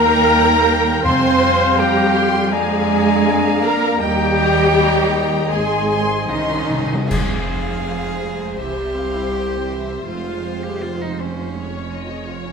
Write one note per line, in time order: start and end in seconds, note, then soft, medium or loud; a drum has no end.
0.00 1.05 D#2 medium
0.00 2.48 G3 medium
0.00 1.03 A#3 loud
0.00 1.00 D#4 medium
0.00 1.06 A#4 loud
0.00 1.01 G5 medium
0.00 1.04 G5 medium
0.00 2.51 G5 medium
0.00 0.79 A#5 loud
0.00 1.05 A#5 loud
1.04 4.00 F2 medium
1.04 2.12 F2 loud
1.04 1.78 C4 loud
1.04 2.49 C4 loud
1.04 1.78 C5 loud
1.04 2.55 F5 medium
1.04 1.79 G#5 medium
1.04 1.80 C6 loud
1.04 1.77 C6 loud
1.78 2.53 G3 medium
1.78 2.52 G4 loud
1.78 2.53 G5 loud
1.78 2.53 G5 medium
1.78 2.16 A#5 medium
2.16 2.53 C6 medium
2.51 3.63 G#3 loud
2.51 5.33 A#3 medium
2.51 3.96 D4 medium
2.51 3.61 G#4 loud
2.51 4.02 D5 medium
2.51 3.96 F5 medium
2.51 3.64 G#5 loud
2.51 3.63 G#5 loud
2.51 5.17 A#5 medium
3.63 4.00 A#3 medium
3.63 4.00 A#4 loud
3.63 4.02 A#5 medium
3.63 4.00 A#5 loud
4.00 5.47 D#2 medium
4.00 5.51 G3 loud
4.00 6.71 D#4 medium
4.00 5.51 G4 loud
4.00 6.76 D#5 medium
4.00 5.22 G5 loud
4.00 5.48 G5 loud
4.00 4.37 G5 medium
4.37 4.74 A#5 medium
4.75 5.49 A#5 medium
5.50 6.29 G#1 medium
5.50 6.29 G#3 medium
5.50 6.29 G#4 loud
5.50 6.71 C5 medium
5.50 6.31 G#5 loud
5.50 6.27 G#5 loud
5.50 6.72 C6 medium
5.50 5.88 C6 medium
5.89 6.28 C6 medium
6.28 6.89 C2 medium
6.28 6.36 C3 soft
6.28 7.10 D#3 medium
6.28 7.10 C#4 loud
6.28 7.09 D#4 medium
6.28 7.10 D#5 medium
6.28 6.88 C6 medium
6.37 6.44 C3 soft
6.45 6.52 C3 soft
6.54 6.61 C3 soft
6.62 6.69 C3 medium
6.71 6.78 C3 medium
6.79 6.85 C3 medium
6.86 6.92 C3 medium
6.94 7.02 C3 loud
7.08 8.55 F1 medium
7.08 8.55 F2 medium
7.08 7.28 G3 medium
7.08 7.28 G#3 medium
7.08 8.58 G#4 medium
7.08 11.52 C5 medium
7.08 8.56 F5 medium
7.08 concert bass drum medium
7.08 crash medium
7.30 7.48 G#3 soft
7.50 7.68 C4 medium
7.68 7.86 F4 medium
7.87 8.04 C4 medium
8.06 8.23 G#3 soft
8.24 8.41 G3 soft
8.43 8.60 G#3 medium
8.57 10.05 C2 medium
8.57 10.06 G4 medium
8.57 8.95 E5 medium
8.61 8.77 E3 medium
8.78 8.96 G3 medium
8.96 9.16 C4 medium
8.96 9.33 F5 medium
9.15 9.34 E4 medium
9.34 9.52 C4 medium
9.34 9.71 G5 medium
9.54 9.71 G3 medium
9.71 9.90 E3 medium
9.71 10.08 E5 medium
9.91 10.08 G3 medium
10.06 12.52 F1 medium
10.06 12.52 F2 medium
10.06 11.53 G#3 medium
10.06 10.25 C4 medium
10.06 10.65 F4 medium
10.06 10.82 F5 medium
10.27 10.45 F4 medium
10.45 10.64 G4 soft
10.63 10.84 G4 medium
10.63 10.82 G#4 medium
10.81 11.03 F4 medium
10.81 11.00 G4 medium
10.81 11.56 C5 medium
11.00 11.22 D#4 medium
11.00 11.19 F4 soft
11.19 11.37 C4 medium
11.19 11.93 C#4 medium
11.36 11.55 F4 medium
11.55 11.72 G#3 medium
11.55 11.93 C#5 medium
11.55 12.52 C#5 medium
11.74 11.93 C#4 medium
11.92 12.11 F4 medium
11.92 12.30 D#5 medium
12.11 12.29 G#4 medium
12.29 12.47 F4 medium
12.29 12.52 C#5 medium
12.47 12.52 C#4 medium